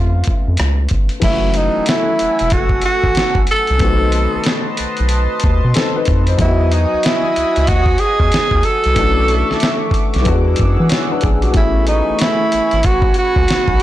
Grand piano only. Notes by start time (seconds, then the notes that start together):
Already playing: A3 B3 C#4 F4 E5
1.20 E3 F#3 A3
1.25 C#4 E4
1.33 F#4
3.78 C3 A3 B3
3.83 D#3 C4 F#4
5.76 C4 A4
5.96 D#4 B4
6.28 D#4 C5
6.38 F#3 B3
6.42 F#4 D#5
8.94 E3 A3 C#4
8.99 D4 F#4
10.21 E3 F#3 B3
10.27 G#3 D4 F#4
10.90 E4 C#5
11.11 D4 B4
11.22 B3 G#4
11.44 F#4
11.51 E3 A3 B3
11.55 C#4 G#4